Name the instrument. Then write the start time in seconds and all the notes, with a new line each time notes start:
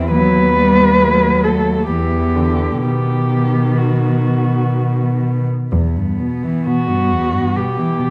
cello
Already playing: E2 E3 C4 E4
0.11 D#2 F#3 B3 B4
0.57 G3
1.00 F#3 A3
1.44 A3 A4
1.87 E2 E3 B3 G4
2.35 D3
2.82 B2 D#3 B3 G4
3.78 F#4
5.73 E2 B3
5.96 G2
6.20 B2
6.43 E3
6.67 B2 F#4
6.89 G2
7.12 E2
7.33 G2
7.56 B2 G4
7.78 E3
7.99 B2